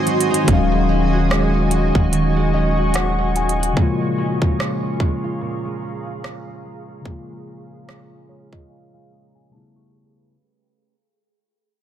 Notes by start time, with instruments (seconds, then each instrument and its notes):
Already playing: steel-string acoustic guitar G#2 C4 D#4, tine electric piano D#3 F#3 G#3 C4 F#4, ambient pad F#4 D#5 G#5 C6
0.07 steel-string acoustic guitar F#3, closed hi-hat
0.21 closed hi-hat
0.31 steel-string acoustic guitar D#4, closed hi-hat
0.44 tine electric piano D#3 F#3, ambient pad D#5 C#6, closed hi-hat
0.48 808-style bass D#1, steel-string acoustic guitar D#3, tine electric piano G#3 C#4, kick
0.53 tine electric piano F5
0.72 steel-string acoustic guitar G#3
0.89 steel-string acoustic guitar C#4
1.13 steel-string acoustic guitar F#4
1.30 steel-string acoustic guitar G#3, cross-stick
1.54 steel-string acoustic guitar C#4
1.71 steel-string acoustic guitar G#3, closed hi-hat
1.95 808-style bass D#1, steel-string acoustic guitar F#4, kick
2.12 steel-string acoustic guitar D#3, closed hi-hat
2.36 steel-string acoustic guitar G#3
2.54 steel-string acoustic guitar C#4, tine electric piano D#5
2.77 steel-string acoustic guitar F#4
2.94 steel-string acoustic guitar G#3, tine electric piano F#5, cross-stick, closed hi-hat
3.18 steel-string acoustic guitar C#4
3.36 steel-string acoustic guitar G#3, tine electric piano G#5, closed hi-hat
3.49 closed hi-hat
3.60 steel-string acoustic guitar F#4, closed hi-hat
3.73 tine electric piano C#3 F3
3.77 steel-string acoustic guitar A#2, tine electric piano G#3 A#3, ambient pad G#4 F5 A#5, kick
3.82 tine electric piano F4
4.01 steel-string acoustic guitar G#3
4.18 steel-string acoustic guitar C#4
4.42 steel-string acoustic guitar F4, kick
4.59 steel-string acoustic guitar G#3, cross-stick
4.83 steel-string acoustic guitar C#4
5.00 steel-string acoustic guitar G#3, kick
5.24 steel-string acoustic guitar F4
5.41 steel-string acoustic guitar A#2
5.65 steel-string acoustic guitar G#3
5.82 steel-string acoustic guitar C#4
6.06 steel-string acoustic guitar F4
6.23 steel-string acoustic guitar G#3, cross-stick
6.47 steel-string acoustic guitar C#4
6.64 steel-string acoustic guitar G#3
6.88 steel-string acoustic guitar F4
7.01 tine electric piano C#3 F3
7.05 steel-string acoustic guitar A#2, tine electric piano G#3 A#3, kick
7.11 tine electric piano F4
7.29 steel-string acoustic guitar G#3
7.47 steel-string acoustic guitar C#4
7.70 steel-string acoustic guitar F4
7.87 steel-string acoustic guitar G#3, cross-stick
8.11 steel-string acoustic guitar C#4
8.29 steel-string acoustic guitar G#3, tine electric piano C#5
8.53 steel-string acoustic guitar F4, tine electric piano D#5, kick
8.70 steel-string acoustic guitar A#2, tine electric piano F5
8.94 steel-string acoustic guitar G#3, tine electric piano F5
9.11 steel-string acoustic guitar C#4
9.35 steel-string acoustic guitar F4, tine electric piano G#5
9.50 tine electric piano B2 G3 A3 B3 A5, steel-string acoustic guitar A3
9.55 tine electric piano C#3 E4
9.76 steel-string acoustic guitar G4, tine electric piano C#6
9.93 steel-string acoustic guitar C#4
10.17 steel-string acoustic guitar B4